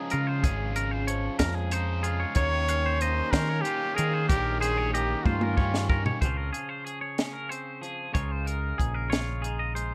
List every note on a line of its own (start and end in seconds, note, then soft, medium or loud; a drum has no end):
0.00 0.41 C#3 medium
0.00 0.44 F3 medium
0.00 1.08 F3 medium
0.00 0.42 G#3 medium
0.00 0.45 C#4 medium
0.00 0.47 D#4 medium
0.00 0.12 F4 medium
0.00 0.46 F4 medium
0.00 0.11 G#4 medium
0.10 0.45 C#3 medium
0.10 2.03 F4 medium
0.10 0.27 A#4 medium
0.10 closed hi-hat medium
0.27 0.43 C5 medium
0.43 1.28 G#1 medium
0.43 1.70 C#3 medium
0.43 1.08 C#3 medium
0.43 1.72 F3 medium
0.43 1.71 G#3 medium
0.43 1.73 C#4 loud
0.43 1.74 F4 medium
0.43 0.76 G#4 medium
0.43 kick loud
0.43 closed hi-hat medium
0.76 0.91 A#4 medium
0.76 closed hi-hat medium
0.91 1.07 C5 medium
1.07 2.35 F3 medium
1.07 1.39 C#5 medium
1.07 closed hi-hat medium
1.39 2.24 F2 medium
1.39 1.55 A#4 loud
1.39 kick medium
1.39 snare loud
1.39 closed hi-hat loud
1.55 1.72 G#4 medium
1.71 2.34 C#3 medium
1.71 2.35 F3 medium
1.71 2.35 G#3 medium
1.71 2.36 C#4 medium
1.71 2.68 D#4 medium
1.71 2.38 F4 loud
1.71 2.04 C5 medium
1.71 closed hi-hat medium
2.03 3.66 F4 medium
2.03 2.20 G#4 medium
2.03 closed hi-hat medium
2.20 2.35 C#5 medium
2.35 3.21 D#2 medium
2.35 4.29 D#3 medium
2.35 3.63 D#3 medium
2.35 3.63 A#3 loud
2.35 3.66 C#4 loud
2.35 3.64 G4 loud
2.35 3.03 C#5 loud
2.35 2.69 C#5 medium
2.35 kick loud
2.35 closed hi-hat medium
2.68 3.34 C#4 medium
2.68 2.85 F5 medium
2.68 closed hi-hat medium
2.86 3.01 C5 medium
3.01 4.26 A#3 medium
3.01 3.33 C5 medium
3.01 3.33 D#5 medium
3.01 closed hi-hat medium
3.31 3.61 D#3 medium
3.31 4.34 C#4 medium
3.31 3.63 A#4 loud
3.31 3.49 C5 medium
3.31 kick medium
3.31 snare loud
3.31 closed hi-hat medium
3.49 3.65 C#5 medium
3.61 4.27 D#3 medium
3.61 3.96 G4 loud
3.61 3.97 G4 medium
3.61 closed hi-hat medium
3.66 4.28 A#3 medium
3.66 4.31 C#4 medium
3.66 3.98 F4 medium
3.66 4.29 G4 medium
3.95 6.23 F4 medium
3.95 4.28 G#4 medium
3.95 4.13 A#4 medium
3.95 closed hi-hat medium
3.99 4.31 D#3 medium
4.13 4.29 C5 medium
4.29 5.14 A#1 medium
4.29 5.56 D#3 medium
4.29 6.23 D#3 medium
4.29 5.57 A#3 medium
4.29 5.57 C#4 loud
4.29 4.59 G4 loud
4.29 5.57 G4 medium
4.29 4.61 A#4 medium
4.29 kick loud
4.29 closed hi-hat loud
4.60 4.91 G#4 medium
4.60 4.78 C5 medium
4.60 closed hi-hat medium
4.64 5.27 C#4 medium
4.78 4.94 C#5 medium
4.93 6.20 A#3 medium
4.93 5.26 G4 medium
4.93 5.26 D#5 medium
4.93 closed hi-hat medium
5.24 6.10 G2 medium
5.24 5.58 C#4 medium
5.24 5.98 F4 medium
5.24 5.43 C5 medium
5.24 kick medium
5.24 high tom medium
5.41 5.57 A#4 medium
5.41 high tom medium
5.57 6.21 D#3 medium
5.57 6.21 A#3 medium
5.57 5.90 C#4 medium
5.57 6.22 C#4 medium
5.57 6.22 G4 medium
5.57 5.89 C#5 medium
5.57 kick medium
5.74 snare medium
5.89 6.19 C#4 medium
5.89 6.06 A#4 medium
5.89 kick medium
6.06 6.21 C#5 medium
6.06 floor tom medium
6.21 6.50 C#2 medium
6.21 8.12 C#3 medium
6.21 7.81 F3 medium
6.21 6.56 C4 soft
6.21 7.18 C#4 medium
6.21 6.37 C5 medium
6.21 kick medium
6.21 closed hi-hat medium
6.25 6.86 F4 medium
6.37 6.52 A#4 medium
6.53 6.69 G#4 medium
6.53 closed hi-hat medium
6.69 6.85 C5 medium
6.85 7.01 G#4 medium
6.85 8.14 G#4 medium
6.85 closed hi-hat soft
7.01 7.33 C#5 medium
7.18 8.13 C#4 medium
7.18 snare medium
7.18 closed hi-hat medium
7.33 7.49 A#4 medium
7.49 8.12 C4 soft
7.49 7.81 C5 medium
7.49 closed hi-hat medium
7.81 8.17 F3 medium
7.81 8.14 G#4 medium
7.81 closed hi-hat soft
8.13 8.72 C#2 medium
8.13 9.94 C#3 medium
8.13 9.74 G#3 medium
8.13 8.43 D#4 medium
8.13 8.77 F4 medium
8.13 8.31 C#5 medium
8.13 kick medium
8.13 closed hi-hat medium
8.31 8.47 C5 medium
8.45 9.43 D#4 medium
8.45 8.80 A#4 medium
8.45 closed hi-hat medium
8.78 9.93 A#1 medium
8.78 9.09 G#4 medium
8.78 8.94 G#4 medium
8.78 kick medium
8.78 closed hi-hat soft
8.94 9.12 A#4 medium
9.10 9.94 F4 medium
9.10 9.44 C#5 medium
9.10 snare medium
9.10 closed hi-hat medium
9.42 9.94 D#4 soft
9.42 9.60 G#4 medium
9.42 closed hi-hat medium
9.59 9.75 D#5 medium
9.75 9.94 G#3 medium
9.75 9.94 C5 medium
9.75 closed hi-hat medium